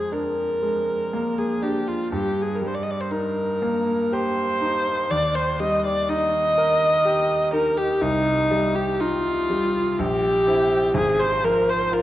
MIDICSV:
0, 0, Header, 1, 3, 480
1, 0, Start_track
1, 0, Key_signature, -3, "major"
1, 0, Tempo, 996678
1, 1022, Time_signature, 3, 2, 24, 8
1, 2936, Tempo, 958466
1, 3893, Key_signature, -3, "minor"
1, 3896, Tempo, 978793
1, 5861, End_track
2, 0, Start_track
2, 0, Title_t, "Viola"
2, 0, Program_c, 0, 41
2, 0, Note_on_c, 0, 68, 63
2, 62, Note_on_c, 0, 70, 71
2, 69, Note_off_c, 0, 68, 0
2, 664, Note_on_c, 0, 68, 67
2, 671, Note_off_c, 0, 70, 0
2, 783, Note_on_c, 0, 67, 62
2, 791, Note_off_c, 0, 68, 0
2, 904, Note_on_c, 0, 65, 60
2, 912, Note_off_c, 0, 67, 0
2, 1020, Note_off_c, 0, 65, 0
2, 1023, Note_on_c, 0, 67, 68
2, 1164, Note_on_c, 0, 68, 59
2, 1171, Note_off_c, 0, 67, 0
2, 1229, Note_on_c, 0, 70, 49
2, 1236, Note_off_c, 0, 68, 0
2, 1285, Note_on_c, 0, 72, 55
2, 1292, Note_off_c, 0, 70, 0
2, 1322, Note_on_c, 0, 74, 59
2, 1329, Note_off_c, 0, 72, 0
2, 1361, Note_on_c, 0, 75, 56
2, 1368, Note_off_c, 0, 74, 0
2, 1399, Note_on_c, 0, 74, 56
2, 1406, Note_off_c, 0, 75, 0
2, 1447, Note_on_c, 0, 72, 53
2, 1455, Note_off_c, 0, 74, 0
2, 1495, Note_on_c, 0, 70, 74
2, 1502, Note_off_c, 0, 72, 0
2, 1987, Note_on_c, 0, 72, 86
2, 1994, Note_off_c, 0, 70, 0
2, 2460, Note_on_c, 0, 74, 83
2, 2467, Note_off_c, 0, 72, 0
2, 2575, Note_on_c, 0, 72, 75
2, 2583, Note_off_c, 0, 74, 0
2, 2693, Note_on_c, 0, 75, 87
2, 2700, Note_off_c, 0, 72, 0
2, 2814, Note_off_c, 0, 75, 0
2, 2820, Note_on_c, 0, 74, 77
2, 2934, Note_on_c, 0, 75, 95
2, 2941, Note_off_c, 0, 74, 0
2, 3652, Note_off_c, 0, 75, 0
2, 3658, Note_on_c, 0, 70, 80
2, 3776, Note_on_c, 0, 67, 79
2, 3784, Note_off_c, 0, 70, 0
2, 3897, Note_on_c, 0, 63, 89
2, 3904, Note_off_c, 0, 67, 0
2, 4256, Note_on_c, 0, 67, 80
2, 4264, Note_off_c, 0, 63, 0
2, 4379, Note_on_c, 0, 65, 90
2, 4386, Note_off_c, 0, 67, 0
2, 4864, Note_on_c, 0, 67, 95
2, 4871, Note_off_c, 0, 65, 0
2, 5338, Note_off_c, 0, 67, 0
2, 5341, Note_on_c, 0, 68, 84
2, 5456, Note_on_c, 0, 72, 83
2, 5464, Note_off_c, 0, 68, 0
2, 5579, Note_on_c, 0, 70, 89
2, 5586, Note_off_c, 0, 72, 0
2, 5701, Note_on_c, 0, 72, 87
2, 5708, Note_off_c, 0, 70, 0
2, 5818, Note_on_c, 0, 70, 90
2, 5825, Note_off_c, 0, 72, 0
2, 5861, Note_off_c, 0, 70, 0
2, 5861, End_track
3, 0, Start_track
3, 0, Title_t, "Grand piano"
3, 0, Program_c, 1, 0
3, 0, Control_c, 1, 64, 127
3, 0, Note_on_c, 1, 41, 39
3, 0, Note_on_c, 1, 56, 33
3, 57, Note_on_c, 1, 62, 35
3, 206, Note_off_c, 1, 56, 0
3, 298, Note_on_c, 1, 56, 35
3, 449, Note_off_c, 1, 62, 0
3, 545, Note_on_c, 1, 58, 36
3, 688, Note_off_c, 1, 56, 0
3, 781, Note_on_c, 1, 62, 40
3, 927, Note_off_c, 1, 58, 0
3, 1003, Note_off_c, 1, 41, 0
3, 1020, Note_off_c, 1, 62, 0
3, 1021, Note_on_c, 1, 43, 47
3, 1029, Control_c, 1, 64, 0
3, 1107, Control_c, 1, 64, 127
3, 1260, Note_on_c, 1, 55, 39
3, 1498, Note_on_c, 1, 63, 40
3, 1647, Note_off_c, 1, 55, 0
3, 1743, Note_on_c, 1, 58, 40
3, 1888, Note_off_c, 1, 63, 0
3, 1986, Note_on_c, 1, 67, 45
3, 2127, Note_off_c, 1, 58, 0
3, 2220, Note_on_c, 1, 63, 41
3, 2363, Note_off_c, 1, 67, 0
3, 2439, Note_off_c, 1, 43, 0
3, 2457, Note_off_c, 1, 63, 0
3, 2460, Note_on_c, 1, 39, 53
3, 2466, Control_c, 1, 64, 0
3, 2535, Control_c, 1, 64, 127
3, 2697, Note_on_c, 1, 55, 42
3, 2934, Note_on_c, 1, 63, 47
3, 3079, Note_off_c, 1, 55, 0
3, 3176, Note_on_c, 1, 70, 50
3, 3319, Note_off_c, 1, 63, 0
3, 3416, Note_on_c, 1, 67, 50
3, 3558, Note_off_c, 1, 70, 0
3, 3654, Note_on_c, 1, 63, 47
3, 3797, Note_off_c, 1, 67, 0
3, 3874, Note_off_c, 1, 39, 0
3, 3895, Note_off_c, 1, 63, 0
3, 3896, Note_on_c, 1, 36, 58
3, 3903, Control_c, 1, 64, 0
3, 3973, Control_c, 1, 64, 127
3, 4138, Note_on_c, 1, 55, 48
3, 4380, Note_on_c, 1, 63, 50
3, 4525, Note_off_c, 1, 55, 0
3, 4625, Note_on_c, 1, 55, 47
3, 4769, Note_off_c, 1, 63, 0
3, 4846, Note_off_c, 1, 36, 0
3, 4866, Note_off_c, 1, 55, 0
3, 4866, Note_on_c, 1, 34, 62
3, 4873, Control_c, 1, 64, 0
3, 4940, Control_c, 1, 64, 127
3, 5101, Note_on_c, 1, 60, 42
3, 5104, Note_on_c, 1, 64, 49
3, 5318, Note_off_c, 1, 60, 0
3, 5319, Note_off_c, 1, 64, 0
3, 5324, Note_off_c, 1, 34, 0
3, 5333, Note_on_c, 1, 32, 59
3, 5345, Control_c, 1, 64, 0
3, 5426, Control_c, 1, 64, 127
3, 5572, Note_on_c, 1, 53, 45
3, 5811, Note_on_c, 1, 65, 51
3, 5861, Note_off_c, 1, 32, 0
3, 5861, Note_off_c, 1, 53, 0
3, 5861, Note_off_c, 1, 65, 0
3, 5861, End_track
0, 0, End_of_file